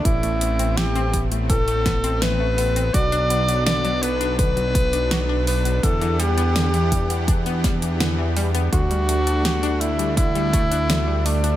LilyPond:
<<
  \new Staff \with { instrumentName = "Tenor saxophone" } { \time 4/4 \key e \minor \tempo 4 = 83 e'4 g'8 r8 a'4 b'4 | d''4 d''8 b'8 b'4. b'8 | a'8 g'2 r4. | fis'4. e'8 e'4. d'8 | }
  \new Staff \with { instrumentName = "Supersaw synth" } { \time 4/4 \key e \minor << { c'1 | <fis d'>1 | <e b g'>1 | <g d'>1 | } \\ { <a b>1~ | <a b>1 | fis''1 | a1 | } >> }
  \new Staff \with { instrumentName = "Synth arpeggio sound" } { \time 4/4 \key e \minor e16 a16 b16 c'16 e'16 c'16 b16 a16 e16 a16 b16 c'16 e16 a16 b16 c'16 | fis'16 d'16 b16 fis16 d16 fis16 b16 d'16 d16 fis16 b16 d'16 fis'16 d'16 b16 fis16 | d16 e16 g16 b16 d16 e16 g16 b16 d'16 b16 g16 e16 d16 e16 g16 b16 | d16 g16 a16 d'16 g'16 d'16 a16 g16 d16 g16 a16 d'16 d16 g16 a16 d'16 | }
  \new Staff \with { instrumentName = "Analog synth bass" } { \clef bass \time 4/4 \key e \minor a,,1 | b,,1 | e,1 | d,1 | }
  \new DrumStaff \with { instrumentName = "Drums" } \drummode { \time 4/4 <hh bd>16 hh16 hh16 hh16 <hh sn>16 hh16 <hh bd>16 hh16 <hh bd>16 hh16 <hh bd sn>16 hh16 <hh sn>8 hho16 hh16 | <hh bd>16 hh16 hh16 hh16 <hh sn>16 hh16 hh16 hh16 <hh bd>16 hh16 <hh bd>16 hh16 <hh sn>8 hho16 hh16 | <hh bd>16 hh16 hh16 hh16 <hh sn>16 hh16 <hh bd>16 hh16 <hh bd>16 hh16 <hh bd sn>16 hh16 <hh sn>8 hho16 hh16 | <hh bd>16 hh16 hh16 hh16 <hh sn>16 hh16 hh16 hh16 <hh bd>16 hh16 <hh bd>16 hh16 <hh sn>8 hho16 hh16 | }
>>